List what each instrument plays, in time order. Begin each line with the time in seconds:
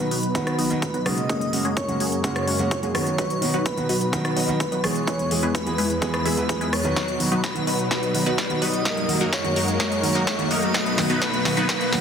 Already playing: analog synth pad B2 F#3 D#4 B4, digital synth lead B4, riser
0.00 grand piano F#4
0.11 supersaw synth F#3 B3 D#4 F#4 B4, open hi-hat
0.23 closed hi-hat
0.34 grand piano D#3 F#3 B3 F#4, digital synth lead B4, kick, closed hi-hat
0.47 cross-stick, closed hi-hat
0.58 supersaw synth F#3 B3 D#4 F#4 D#5, open hi-hat
0.70 grand piano D#3 F#3 B3 F#4, closed hi-hat
0.82 kick, closed hi-hat
0.94 supersaw synth F#3 B3 D#4 F#4 B4, closed hi-hat
1.05 grand piano C#3 G#3 A#3 F#4, digital synth lead D#5, cross-stick, open hi-hat
1.18 closed hi-hat
1.29 analog synth pad F#2 F#3 G#4 A#4, supersaw synth G#3 A#3 C#4 F#4 G#4, kick, closed hi-hat
1.41 closed hi-hat
1.53 grand piano C#3 G#3 A#3 F#4, open hi-hat
1.65 supersaw synth G#3 A#3 C#4 F#4 G#4, closed hi-hat
1.77 digital synth lead C#5, kick, closed hi-hat
1.88 grand piano C#3 G#3 A#3 F#4, closed hi-hat
2.00 supersaw synth G#3 A#3 C#4 F#4 G#4, open hi-hat
2.12 closed hi-hat
2.23 grand piano C#3 G#3 A#3 F#4, digital synth lead C#5, kick, closed hi-hat
2.36 cross-stick, closed hi-hat
2.48 supersaw synth G#3 A#3 C#4 F#4 C#5, open hi-hat
2.59 grand piano C#3 G#3 A#3 F#4, closed hi-hat
2.71 kick, closed hi-hat
2.83 supersaw synth G#3 A#3 C#4 F#4 G#4, closed hi-hat
2.94 grand piano D#3 F#3 B3 F#4, digital synth lead C#5, cross-stick, open hi-hat
3.07 closed hi-hat
3.18 analog synth pad B2 D#4 B4, supersaw synth F#3 B3 D#4 F#4 B4, kick, closed hi-hat
3.30 closed hi-hat
3.42 grand piano D#3 F#3 B3 F#4, open hi-hat
3.54 supersaw synth F#3 B3 D#4 F#4 B4, closed hi-hat
3.66 digital synth lead B4, kick, closed hi-hat
3.77 grand piano D#3 F#3 B3 F#4, closed hi-hat
3.89 supersaw synth F#3 B3 D#4 F#4 B4, open hi-hat
4.01 closed hi-hat
4.12 grand piano D#3 F#3 B3 F#4, digital synth lead B4, kick, closed hi-hat
4.25 cross-stick, closed hi-hat
4.36 supersaw synth F#3 B3 D#4 F#4 D#5, open hi-hat
4.48 grand piano D#3 F#3 B3 F#4, closed hi-hat
4.60 kick, closed hi-hat
4.72 supersaw synth F#3 B3 D#4 F#4 B4, closed hi-hat
4.83 grand piano E3 G#3 B3 G#4, digital synth lead C#5, cross-stick, open hi-hat
4.96 closed hi-hat
5.07 analog synth pad E2 E3 G#4, supersaw synth G#3 B3 E4 G#4 B4, kick, closed hi-hat
5.19 closed hi-hat
5.31 grand piano E3 G#3 B3 G#4, open hi-hat
5.43 supersaw synth G#3 B3 E4 G#4 B4, closed hi-hat
5.55 digital synth lead B4, kick, closed hi-hat
5.66 grand piano E3 G#3 B3 G#4, closed hi-hat
5.78 supersaw synth G#3 B3 E4 G#4 B4, open hi-hat
5.90 closed hi-hat
6.01 grand piano E3 G#3 B3 G#4, digital synth lead B4, kick, closed hi-hat
6.14 cross-stick, closed hi-hat
6.25 grand piano E3 G#3 B3 G#4, supersaw synth G#3 B3 E4 G#4 E5, open hi-hat
6.37 grand piano E3 G#3 B3 B4, closed hi-hat
6.49 grand piano E3 G#3 B3 G#4, kick, closed hi-hat
6.61 supersaw synth G#3 B3 E4 G#4 B4, closed hi-hat
6.73 digital synth lead C#5, cross-stick, open hi-hat
6.84 grand piano D#3 F#3 B3 B4, closed hi-hat
6.96 analog synth pad B2 F#3 D#4, supersaw synth F#3 B3 D#4 F#4 B4, kick, snare, closed hi-hat
7.08 closed hi-hat
7.20 grand piano D#3 F#3 B3 F#4, open hi-hat
7.32 supersaw synth F#3 B3 D#4 F#4 B4, closed hi-hat
7.43 digital synth lead B4, kick, snare, closed hi-hat
7.55 grand piano D#3 F#3 B3 F#4, closed hi-hat
7.67 supersaw synth F#3 B3 D#4 F#4 B4, open hi-hat
7.79 closed hi-hat
7.91 supersaw synth F#3 B3 D#4 F#4 B4, digital synth lead B4, kick, snare, closed hi-hat
8.03 closed hi-hat
8.14 grand piano D#3 F#3 B3 F#4, open hi-hat
8.26 supersaw synth F#3 B3 D#4 F#4 B4, closed hi-hat
8.38 kick, snare, closed hi-hat
8.49 grand piano D#3 F#3 B3 F#4, closed hi-hat
8.62 supersaw synth F#3 B3 D#4 F#4 B4, digital synth lead D#5, open hi-hat
8.74 closed hi-hat
8.85 analog synth pad F#2 F#3 G#4 A#4, supersaw synth F#3 A#3 D#4 F#4 A#4, kick, snare, closed hi-hat
8.97 closed hi-hat
9.08 grand piano D#3 F#3 A#3 F#4, open hi-hat
9.21 supersaw synth F#3 A#3 D#4 F#4 A#4, closed hi-hat
9.33 digital synth lead C#5, kick, snare, closed hi-hat
9.44 grand piano D#3 F#3 A#3 F#4, closed hi-hat
9.56 supersaw synth F#3 A#3 D#4 F#4 A#4, open hi-hat
9.68 closed hi-hat
9.80 supersaw synth F#3 A#3 D#4 F#4 A#4, digital synth lead C#5, kick, snare, closed hi-hat
9.92 closed hi-hat
10.03 grand piano D#3 F#3 A#3 F#4, open hi-hat
10.15 supersaw synth F#3 A#3 D#4 F#4 A#4, closed hi-hat
10.27 kick, snare, closed hi-hat
10.38 grand piano D#3 F#3 A#3 F#4, closed hi-hat
10.51 supersaw synth F#3 A#3 D#4 F#4 A#4, digital synth lead D#5, open hi-hat
10.63 closed hi-hat
10.74 analog synth pad B2 F#3 D#4 B4, supersaw synth F#3 B3 D#4 F#4 B4, kick, snare, closed hi-hat
10.86 closed hi-hat
10.97 grand piano D#3 F#3 B3 F#4, snare, open hi-hat
11.10 supersaw synth F#3 B3 D#4 F#4 B4, closed hi-hat
11.22 supersaw synth F#3 B3 D#4 F#4 B4, digital synth lead B4, kick, snare, closed hi-hat
11.33 closed hi-hat
11.45 grand piano D#3 F#3 B3 F#4, snare, open hi-hat
11.57 supersaw synth F#3 B3 D#4 F#4 B4, closed hi-hat
11.69 supersaw synth F#3 B3 D#4 F#4 B4, digital synth lead B4, kick, snare, closed hi-hat
11.81 closed hi-hat
11.92 grand piano D#3 F#3 B3 F#4, snare, open hi-hat